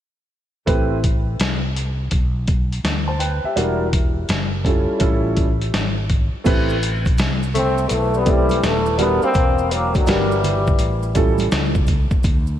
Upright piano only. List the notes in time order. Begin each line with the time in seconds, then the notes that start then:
0.66 A3 C4 E4 G4 B4
3.08 C5 A5
3.19 B4 G5
3.45 G4 E5
3.56 G3 D4 E4 F#4 A#4
4.64 G3 C#4 E4 F4 A4
4.99 G3 C#4 E4 F4 A4
6.44 A3 C4 E4 G4 B4
8.25 A3 C4 E4 G4 D5
8.98 G3 D4 E4 F#4 A#4
10.06 G3 D4 E4 F#4 A#4
11.15 G3 C#4 E4 F4 A4